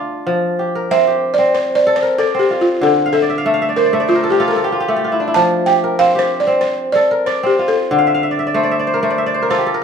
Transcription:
Already playing: kora A3 D4 F4
0.27 kora F3
0.59 kora G4
0.75 kora A#4
0.91 kora C4, balafon E5
1.07 kora G4
1.34 balafon D5
1.39 kora C4
1.55 balafon C5
1.75 balafon D5
1.87 kora A4
1.96 balafon C5
2.02 kora A#4
2.18 balafon A4, kora D5
2.35 kora C4
2.39 balafon G4
2.51 kora F4
2.61 balafon F4
2.81 kora D3, balafon A4
3.06 kora F5
3.13 balafon A4, kora E5
3.22 kora D5
3.30 kora E5
3.38 kora F5
3.46 kora A3 E5
3.54 kora F5
3.62 kora E5
3.69 kora D5
3.76 balafon A#4, kora C5
3.85 kora D5
3.93 kora A3 E5
4.00 kora D5
4.08 balafon F4, kora C5
4.15 kora A#4
4.24 kora A4
4.30 balafon G4, kora G4
4.40 kora F4 A4
4.48 balafon A4, kora A#4
4.56 kora A4
4.64 kora G4
4.72 kora F4
4.80 kora G4
4.88 kora A3 A4
4.96 kora G4
5.04 kora F4
5.12 kora E4
5.20 kora D4
5.28 kora E4
5.34 kora F3, balafon A5
5.66 kora G4, balafon G5
5.84 kora A#4
5.99 kora C4, balafon F5
6.15 kora G4, balafon C5
6.40 balafon D5
6.47 kora C4
6.61 balafon C5
6.92 kora A4, balafon D5
7.11 kora A#4
7.26 balafon C5, kora D5
7.43 kora C4, balafon G4
7.59 kora F4
7.68 balafon A4
7.91 kora D3
7.99 kora F5
8.07 kora E5
8.14 kora F5
8.23 kora E5
8.31 kora D5
8.39 kora E5
8.47 kora D5
8.54 kora A3 C5
8.63 kora D5
8.71 kora E5
8.79 kora D5
8.87 kora C5
8.94 kora A#4
9.03 kora A3 C5
9.10 kora D5
9.18 kora E5
9.26 kora D5
9.34 kora C5
9.42 kora A#4
9.50 kora F4 A4, balafon C5
9.58 kora G4
9.66 kora A4
9.74 kora A#4

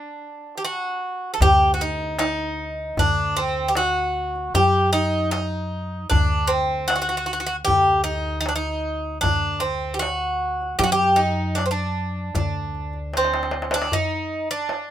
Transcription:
Already playing: bouzouki D4
0.57 bouzouki G4
0.65 bouzouki F#4
1.34 bouzouki A4
1.41 upright bass D2, bouzouki G4, darbuka dum
1.74 bouzouki F#4
1.81 bouzouki D#4
2.19 bouzouki D#4, darbuka tek
2.97 upright bass D2, bouzouki D4, darbuka dum
3.36 bouzouki C4
3.68 bouzouki G4
3.75 bouzouki F#4, darbuka tek
4.35 darbuka ka
4.54 upright bass F#2, bouzouki G4, darbuka dum
4.93 bouzouki D#4
5.31 bouzouki D#4, darbuka tek
6.10 upright bass D2, bouzouki D4, darbuka dum
6.47 bouzouki C4
6.88 bouzouki F#4, darbuka tek
6.96 bouzouki F#4
7.02 bouzouki F#4
7.09 bouzouki F#4
7.17 bouzouki F#4
7.26 bouzouki F#4
7.33 bouzouki F#4
7.40 bouzouki F#4
7.46 bouzouki F#4, darbuka ka
7.65 upright bass D2, bouzouki G4, darbuka dum
8.04 bouzouki D#4
8.41 bouzouki D#4
8.46 bouzouki D4, darbuka tek
8.56 bouzouki D#4
9.21 upright bass D2, bouzouki D4, darbuka dum
9.60 bouzouki C4
9.94 bouzouki G4
9.99 bouzouki F#4, darbuka tek
10.62 darbuka ka
10.79 upright bass F#2, bouzouki G4, darbuka dum
10.84 bouzouki F#4
10.92 bouzouki G4
11.01 darbuka ka
11.16 bouzouki D#4
11.55 bouzouki D4, darbuka tek
11.66 bouzouki C4
11.71 bouzouki D4
11.78 darbuka ka
12.35 upright bass D2, bouzouki D4, darbuka dum
12.75 darbuka ka
12.93 darbuka ka
13.14 bouzouki C4, darbuka tek
13.24 darbuka ka
13.34 darbuka tek
13.43 darbuka ka
13.51 darbuka tek
13.62 darbuka ka
13.71 bouzouki D4, darbuka tek
13.82 darbuka ka
13.92 bouzouki D#4, darbuka dum
14.11 darbuka ka
14.51 bouzouki D4
14.69 darbuka tek

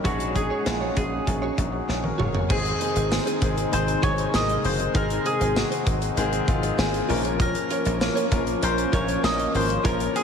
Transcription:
Already playing: analog synth pad C#4
0.04 slap bass A#1, grand piano F#3 C#4 D#4 G#4, analog synth pad G#3 F#4, clean electric guitar F#4 G#4 C#5, mandolin F#4, kick, closed hi-hat
0.20 closed hi-hat
0.35 grand piano F#3 C#4 D#4 G#4, mandolin G#4, kick, closed hi-hat
0.50 clean electric guitar F#4 G#4 C#5
0.66 slap bass A#1, grand piano F#3 C#4 D#4 F4, snare, closed hi-hat
0.81 clean electric guitar F#4 G#4 C#5
0.96 slap bass A#1, grand piano F#3 C#4 D#4 G#4, mandolin G#4, muted clean electric guitar stroke, kick, closed hi-hat
1.12 muted clean electric guitar stroke
1.27 slap bass A#1, grand piano F#3 C#4 D#4 G#4, muted clean electric guitar stroke, kick, closed hi-hat
1.42 clean electric guitar F#4 G#4 C#5
1.58 slap bass A#1, grand piano F#3 C#4 D#4 G#4, muted clean electric guitar stroke, kick, closed hi-hat
1.73 muted clean electric guitar stroke
1.88 slap bass A#1, grand piano C#5, muted clean electric guitar stroke, snare
2.03 grand piano A#4, muted clean electric guitar stroke, high tom
2.18 slap bass F#1, clean electric guitar F#4 G#4 C#5, mid tom
2.34 clean electric guitar F#4 G#4 C#5, grand piano G#4, floor tom
2.49 slap bass G#1, analog synth pad C3 G#3 D#4, grand piano D#3 G#3 C4 G#4, clean electric guitar D#4 G#4 C5, mandolin G#4, kick, crash
2.65 muted clean electric guitar stroke, closed hi-hat
2.80 grand piano D#3 G#3 C4 G#4, clean electric guitar D#4 G#4 C5, closed hi-hat
2.95 slap bass G#1, clean electric guitar D#4 G#4 C5, closed hi-hat
3.11 grand piano D#3 G#3 C4 G#4, muted clean electric guitar stroke, snare, tambourine
3.26 clean electric guitar D#4 G#4 C5, closed hi-hat
3.41 slap bass G#1, grand piano D#3 G#3 C4 G#4, clean electric guitar D#4 G#4 C5, kick, closed hi-hat
3.57 muted clean electric guitar stroke, closed hi-hat
3.72 slap bass G#1, grand piano D#3 G#3 C4 G#4, mandolin C5, muted clean electric guitar stroke, closed hi-hat
3.87 muted clean electric guitar stroke, closed hi-hat
4.02 slap bass G#1, grand piano D#3 G#3 C4 G#4, clean electric guitar D#4 G#4 C5, mandolin C#5, kick, closed hi-hat
4.17 clean electric guitar D#4 G#4 C5, closed hi-hat
4.33 slap bass G#1, grand piano D#3 G#3 C4 A#4, mandolin D#5, snare, tambourine
4.48 muted clean electric guitar stroke, closed hi-hat
4.64 slap bass F#1, grand piano D#3 G#3 C4 G#4, mandolin C5, open hi-hat
4.79 muted clean electric guitar stroke, closed hi-hat
4.94 slap bass G#1, grand piano D#3 G#3 C4 G#4, clean electric guitar D#4 G#4 C5, mandolin A#4, kick, closed hi-hat
5.10 closed hi-hat
5.25 grand piano D#3 G#3 C4 G#4, mandolin G#4, muted clean electric guitar stroke, closed hi-hat
5.41 slap bass G#1, clean electric guitar D#4 G#4 C5, closed hi-hat
5.56 grand piano D#3 G#3 C4 F#4, snare, tambourine
5.71 clean electric guitar D#4 G#4 C5, closed hi-hat
5.86 slap bass G#1, grand piano D#3 G#3 C4 G#4, muted clean electric guitar stroke, kick, closed hi-hat
6.02 muted clean electric guitar stroke, closed hi-hat
6.17 slap bass G#1, grand piano D#3 G#3 C4 G#4, muted clean electric guitar stroke, closed hi-hat
6.32 muted clean electric guitar stroke, closed hi-hat
6.47 slap bass G#1, grand piano D#3 G#3 C4 F4, kick, closed hi-hat
6.63 muted clean electric guitar stroke, closed hi-hat
6.78 slap bass G#1, grand piano D#3 G#3 C4 G#4, muted clean electric guitar stroke, snare, tambourine
6.94 muted clean electric guitar stroke, closed hi-hat
7.08 slap bass A#1, grand piano F3 A#3 C#4 A#4, analog synth pad F3 A#3 C#4, clean electric guitar F4 A#4 C#5, open hi-hat
7.24 clean electric guitar F4 A#4 C#5, closed hi-hat
7.40 clean electric guitar F4 A#4 C#5, mandolin A#4, kick, closed hi-hat
7.55 muted clean electric guitar stroke, closed hi-hat
7.70 grand piano F3 A#3 C#4 A#4, clean electric guitar F4 A#4 C#5, closed hi-hat
7.85 slap bass A#1, clean electric guitar F4 A#4 C#5, closed hi-hat
8.01 grand piano F3 A#3 C#4 A#4, muted clean electric guitar stroke, snare, tambourine
8.16 clean electric guitar F4 A#4 C#5, closed hi-hat
8.31 slap bass A#1, grand piano F3 A#3 C#4 A#4, clean electric guitar F4 A#4 C#5, kick, closed hi-hat
8.47 muted clean electric guitar stroke, closed hi-hat
8.62 slap bass A#1, grand piano F3 A#3 C#4 A#4, mandolin C5, muted clean electric guitar stroke, closed hi-hat
8.77 muted clean electric guitar stroke, closed hi-hat
8.92 slap bass A#1, grand piano F3 A#3 C#4 A#4, clean electric guitar F4 A#4 C#5, mandolin C#5, kick, closed hi-hat
9.07 clean electric guitar F4 A#4 C#5, closed hi-hat
9.23 slap bass A#1, grand piano F3 A#3 C#4 C#5, mandolin D#5, muted clean electric guitar stroke, snare, tambourine
9.38 muted clean electric guitar stroke, closed hi-hat
9.54 slap bass G#1, grand piano F3 A#3 C#4 A#4, mandolin C5, open hi-hat
9.69 muted clean electric guitar stroke, closed hi-hat
9.84 slap bass A#1, grand piano F3 A#3 C#4 A#4, clean electric guitar F4 A#4 C#5, mandolin A#4, kick, closed hi-hat
10.00 closed hi-hat
10.15 grand piano F3 A#3 C#4 A#4, mandolin G#4, muted clean electric guitar stroke, closed hi-hat

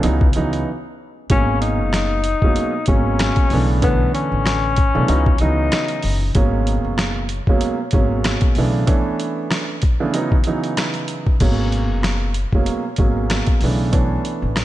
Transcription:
0.03 upright bass C#2, grand piano C#3 E3 F#3 B3 D#4, closed hi-hat
0.21 kick
0.33 upright bass C#2, grand piano C#3 E3 F#3 B3 D#4, closed hi-hat
0.53 closed hi-hat
1.30 upright bass G#1, grand piano B2 F#3 G#3 A#3 C#4, tenor saxophone C#4, kick, closed hi-hat
1.61 tenor saxophone D#4, closed hi-hat
1.79 upright bass F#1
1.93 cross-stick, snare, closed hi-hat
2.24 closed hi-hat
2.42 upright bass F#1, grand piano B2 F#3 G#3 A#3 C#4, kick
2.56 closed hi-hat
2.86 upright bass G#1, grand piano B2 F#3 G#3 A#3 C#4, tenor saxophone C#4, kick, closed hi-hat
3.19 cross-stick, snare, closed hi-hat
3.36 kick, closed hi-hat
3.50 upright bass B1, grand piano C#3 E3 A3 B3 D4, open hi-hat
3.82 grand piano D3 E3 A3 B3 C#4, tenor saxophone B3, kick, closed hi-hat
4.15 tenor saxophone C#4, closed hi-hat
4.32 upright bass A1
4.46 cross-stick, snare, closed hi-hat
4.76 kick, closed hi-hat
4.95 upright bass B1, grand piano C#3 E3 A3 B3 D4
5.08 upright bass C#2, grand piano C#3 E3 F#3 B3 D#4, closed hi-hat
5.26 kick
5.38 upright bass C#2, grand piano C#3 E3 F#3 B3 D#4, tenor saxophone D#4, closed hi-hat
5.72 cross-stick, snare, closed hi-hat
5.88 closed hi-hat
6.03 upright bass F#1, open hi-hat
6.35 upright bass G#1, grand piano B2 F#3 G#3 A#3 C#4, kick, closed hi-hat
6.67 closed hi-hat
6.84 upright bass F#1
6.98 cross-stick, snare, closed hi-hat
7.29 closed hi-hat
7.47 upright bass F#1, grand piano B2 F#3 G#3 A#3 C#4, kick
7.61 closed hi-hat
7.91 upright bass G#1, grand piano B2 F#3 G#3 A#3 C#4, kick, closed hi-hat
8.24 cross-stick, snare, closed hi-hat
8.41 kick, closed hi-hat
8.55 upright bass B1, grand piano C#3 E3 A3 B3 D4, open hi-hat
8.87 grand piano E3 A3 B3 C#4 D4, kick, closed hi-hat
9.20 closed hi-hat
9.51 cross-stick, snare, closed hi-hat
9.82 kick, closed hi-hat
10.00 grand piano C#3 E3 A3 B3 D4
10.14 grand piano C#3 E3 F#3 B3 D#4, closed hi-hat
10.32 kick
10.44 grand piano C#3 E3 F#3 B3 D#4, closed hi-hat
10.64 closed hi-hat
10.77 cross-stick, snare, closed hi-hat
10.94 closed hi-hat
11.08 closed hi-hat
11.27 kick
11.40 upright bass G#1, grand piano B2 F#3 G#3 A#3 C#4, kick, closed hi-hat, crash
11.72 closed hi-hat
11.90 upright bass F#1
12.03 cross-stick, snare, closed hi-hat
12.34 closed hi-hat
12.53 upright bass F#1, grand piano B2 F#3 G#3 A#3 C#4, kick
12.66 closed hi-hat
12.96 upright bass G#1, grand piano B2 F#3 G#3 A#3 C#4, kick, closed hi-hat
13.30 cross-stick, snare, closed hi-hat
13.47 kick, closed hi-hat
13.61 upright bass B1, grand piano C#3 E3 A3 B3 D4, open hi-hat
13.92 grand piano E3 A3 B3 C#4 D4, kick, closed hi-hat
14.25 closed hi-hat
14.42 upright bass A1
14.56 cross-stick, snare, closed hi-hat

